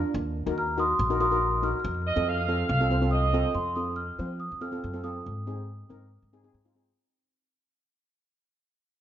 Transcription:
Already playing: D4 F4 A#4
0.14 D#2
0.46 D#2 D#4 F#4 A#4
0.58 A#5 F6
0.78 D#4 F#4 A#4 C6 D#6
0.99 A#1
1.10 D#4 F#4 A#4
1.20 D#4 F#4 A#4 C6 D#6
1.31 D#4 F#4 A#4
1.63 D#4 F#4 A#4 C#6 F6
1.72 F6
1.80 F6
1.84 F2 F6
1.94 F6
2.02 F6
2.06 D#5 F6
2.16 F2 C4 F4 A4 F6
2.23 F6
2.28 F5 F6
2.38 F6
2.46 C4 F4 A4 F6
2.55 F6
2.62 F6
2.69 C2 F5 F6
2.77 C4 F6
2.81 F4 A4 F6
2.90 C4 F4 C5 F6
3.02 C4 F4 A4
3.11 D#5 D#6
3.34 C4 F4 A4
3.54 F2 C6
3.76 C4 F4 A4 D#6
3.96 F6
4.19 F3 C4 F4 C5
4.40 D#6
4.52 F2
4.61 C4 F4 A4 F6
4.72 C4 F4 A4
4.84 F#2
4.93 C4 F4 A4
5.04 C4 F4 A4 D#6
5.26 G#2
5.47 C4 D#4 G#4
5.89 G#2 C4 D#4 A#4
6.22 G#2
6.33 C4 D#4 G#4
6.44 C4 D#4 G#4
6.54 G#2
6.65 C4 D#4 F4
6.75 C4 D#4 G#4

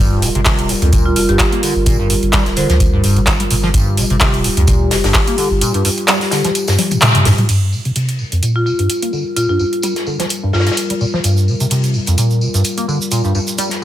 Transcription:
Already playing: D1 G3 F4
0.00 G2 A#4
0.22 C3, open hi-hat, tambourine
0.35 G1 C3, closed hi-hat
0.45 C3, kick, snare, clap, closed hi-hat, open hi-hat
0.59 D1, closed hi-hat
0.69 G2, open hi-hat, tambourine
0.82 D2 F2, closed hi-hat
0.92 A#2, kick, closed hi-hat, tambourine
1.06 F4
1.16 F1 C3 F4, open hi-hat, tambourine
1.29 G1 G2 G4, closed hi-hat
1.39 kick, snare, clap, closed hi-hat, tambourine
1.52 A#3, closed hi-hat
1.63 D3, open hi-hat, tambourine
1.76 G1
1.86 A#2, kick, closed hi-hat, tambourine
1.99 G2
2.10 G2, open hi-hat, tambourine
2.23 G1, closed hi-hat
2.33 G3, kick, snare, clap, closed hi-hat, tambourine
2.46 D1, snare, closed hi-hat
2.56 D3 C5, open hi-hat, tambourine
2.69 D2 F3, snare, closed hi-hat
2.80 kick, closed hi-hat, tambourine
2.93 G2
3.04 D1 G2, open hi-hat, tambourine
3.17 G1 A#2, closed hi-hat
3.27 kick, snare, clap, closed hi-hat, tambourine
3.40 G3, closed hi-hat
3.50 G1 A#2, open hi-hat, tambourine
3.63 F3, snare
3.74 G2 G4, kick, closed hi-hat, tambourine
3.97 C3, open hi-hat, tambourine
4.10 G1 C3, closed hi-hat
4.20 C3, kick, snare, clap, closed hi-hat, open hi-hat
4.34 D1, closed hi-hat
4.44 G2, open hi-hat, tambourine
4.57 D2 F2, closed hi-hat
4.67 A#2, kick, closed hi-hat, tambourine
4.91 F1 C3, snare, open hi-hat
5.04 G1 G2, snare, closed hi-hat, open hi-hat
5.14 kick, snare, clap, closed hi-hat, open hi-hat
5.27 A#3, closed hi-hat
5.38 D3, open hi-hat, tambourine
5.51 G1
5.61 A#2, closed hi-hat, tambourine
5.74 G2, closed hi-hat
5.85 G2, open hi-hat, tambourine
5.98 closed hi-hat
6.08 G3, snare, clap, closed hi-hat, tambourine
6.21 snare, open hi-hat
6.31 D3, snare, open hi-hat, tambourine
6.45 F3, snare, closed hi-hat
6.55 closed hi-hat, tambourine
6.67 G2, snare, closed hi-hat, tambourine
6.79 G3, snare, open hi-hat, high tom
6.91 G2, closed hi-hat, high tom, tambourine
7.01 A#2, clap, closed hi-hat, mid tom, tambourine
7.15 G2, closed hi-hat, mid tom
7.25 G2, snare, mid tom, open hi-hat
7.38 G3, closed hi-hat, mid tom
7.49 G2 G3 F4 A#4, closed hi-hat, tambourine, crash
7.72 C3, tambourine
7.85 C3, closed hi-hat
7.96 C3, closed hi-hat, open hi-hat
8.09 closed hi-hat
8.19 G2, tambourine
8.32 F2, closed hi-hat
8.43 A#2, closed hi-hat, tambourine
8.56 F4
8.66 C3 F4, tambourine
8.79 G2, closed hi-hat
8.90 closed hi-hat, tambourine
9.02 A#3, closed hi-hat
9.13 D3, tambourine
9.36 A#2 F4, closed hi-hat, tambourine
9.49 G2 F4
9.59 G2, tambourine
9.73 closed hi-hat
9.82 G3, closed hi-hat, tambourine
9.96 snare, closed hi-hat
10.06 D3, tambourine
10.19 F3, snare, closed hi-hat
10.29 closed hi-hat, tambourine
10.43 G2
10.53 G2 F4, snare, open hi-hat
10.60 snare, open hi-hat
10.66 A#2, snare, closed hi-hat, open hi-hat
10.72 snare, open hi-hat
10.77 closed hi-hat, tambourine
10.90 G3, closed hi-hat
11.01 A#2, tambourine
11.13 F3, snare
11.24 G2, closed hi-hat, tambourine, shaker
11.37 shaker
11.48 C3, tambourine
11.60 C3, closed hi-hat, shaker
11.70 C3, closed hi-hat, open hi-hat, shaker
11.84 closed hi-hat, shaker
11.94 G2, tambourine
12.06 F2, closed hi-hat, shaker
12.18 A#2, closed hi-hat, tambourine, shaker
12.31 shaker
12.41 C3, tambourine
12.54 G2, closed hi-hat, shaker
12.64 closed hi-hat, tambourine, shaker
12.77 A#3, closed hi-hat, shaker
12.88 D3, tambourine
13.02 shaker
13.11 A#2, closed hi-hat, tambourine, shaker
13.24 G2, shaker
13.35 G2, tambourine
13.47 closed hi-hat, shaker
13.58 G3, closed hi-hat, tambourine, shaker
13.70 snare, closed hi-hat, shaker

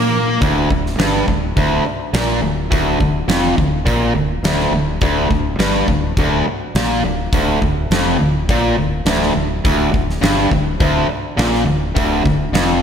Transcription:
Already playing: A#2 A#3
0.41 D1 D2, kick, open hi-hat
0.70 D1 D2, kick
0.86 snare
0.99 G1 G2, snare, open hi-hat
1.28 D1 D2, kick
1.57 D1 D2, kick, open hi-hat
1.86 muted overdriven electric guitar stroke
2.13 A#1 A#2, snare, open hi-hat
2.42 D1 D2
2.71 D1 D2, kick, open hi-hat
3.00 D1 D2, kick
3.28 F1 F2, snare, open hi-hat
3.57 D1 D2, kick
3.85 A#1 A#2, kick, open hi-hat
4.14 D1 D2
4.43 D1 D2, snare, open hi-hat
4.59 snare
4.71 D1 D2
5.01 D1 D2, kick, open hi-hat
5.30 D1 D2, kick
5.59 G1 G2, snare, open hi-hat
5.88 D1 D2, kick
6.17 D1 D2, kick, open hi-hat
6.46 muted fingered electric bass stroke, muted overdriven electric guitar stroke
6.75 A#1 A#2, snare, open hi-hat
7.03 D1 D2
7.33 D1 D2, kick, open hi-hat
7.61 D1 D2, kick
7.90 F1 F2, snare, open hi-hat
8.19 D1 D2
8.49 A#1 A#2, kick, open hi-hat
8.77 D1 D2
9.05 D1 D2, snare, open hi-hat
9.22 snare
9.35 D1 D2
9.65 D1 D2, kick, open hi-hat
9.92 D1 D2, kick
10.10 snare
10.21 G1 G2, snare, open hi-hat
10.51 D1 D2, kick
10.80 D1 D2, kick, open hi-hat
11.09 muted fingered electric bass stroke, muted overdriven electric guitar stroke
11.37 A#1 A#2, snare, open hi-hat
11.54 snare
11.65 D1 D2
11.95 D1 D2, kick, open hi-hat
12.24 D1 D2, kick
12.52 F1 F2, snare, open hi-hat

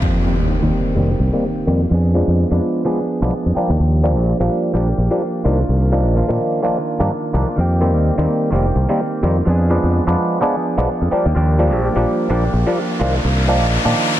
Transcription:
0.01 F2 D#3 A#3 C4 G4, impact
0.25 D#3 G3 A#3 C4
0.38 D#2
0.48 D#3 A#3 C4 G4
0.62 D#2 D#3 G3 A#3 C4
0.95 F1 D#3 G3 A#3 C4
1.00 G4
1.20 C2
1.33 D#3 G3 A#3 C4
1.67 F2 D#3 G3 A#3 C4
1.89 F2 F3 B3 D4
1.94 G#4
2.14 F3 G#3 B3 D4
2.27 F2
2.51 F2 F3 G#3 B3 D4
2.85 F3 G#3 B3 D4 G#4
3.22 B1 F3 G#3 B3 D4
3.46 F2
3.55 F3 G3 A#3 D4 G4, muted fingered electric bass stroke
3.59 F3
3.69 D#2
3.80 D#2
4.03 F3 G3 A#3 D4
4.17 A#1
4.40 A#1 F3 G3 A#3 D4
4.74 A#1 F3 G3 A#3 D4 G4
4.98 A#1
5.11 F3 G3 A#3 D4
5.44 C2 D#3 F3 A#3 D4 F4
5.69 C2
5.92 D#3 F3 A#3 D4
6.06 A#1
6.15 D#3 A#3 D4 F4
6.29 A#2 D#3 F3 A#3 D4
6.62 D#3 F3 A#3 D4 F4
7.00 G2 D#3 F3 A#3 D4
7.33 C2 D#3 F3 A#3 D4 F4
7.56 F2 D#3 A#3 C4
7.61 G4
7.81 D#3 G3 A#3 C4
7.94 D#2
8.18 D#2 D#3 G3 A#3 C4
8.51 F1 D#3 G3 A#3 C4
8.55 G4
8.76 C2
8.89 D#3 G3 A#3 C4
9.23 F2 D#3 G3 A#3 C4
9.45 F2 F3 B3 D4
9.50 G#4
9.70 F3 G#3 B3 D4
9.84 F2
10.07 F2 F3 G#3 B3 D4
10.41 F3 G#3 B3 D4 G#4
10.78 B1 F3 G#3 B3 D4
11.01 F2
11.11 F3 G3 A#3 D4 G4, muted fingered electric bass stroke
11.26 D#2
11.35 D#2 F3 A#3 D4 G4, riser
11.59 F3 G3 A#3 D4
11.73 A#1
11.82 F3 A#3 D4 G4
11.96 A#1 F3 G3 A#3 D4
12.30 A#1 F3 G3 A#3 D4 G4
12.54 A#1
12.67 F3 G3 A#3 D4
12.99 C2 D#3 F3 A#3 D4 F4
13.04 D#3
13.25 C2
13.48 D#3 F3 A#3 D4
13.61 A#1
13.85 A#2 D#3 F3 A#3 D4

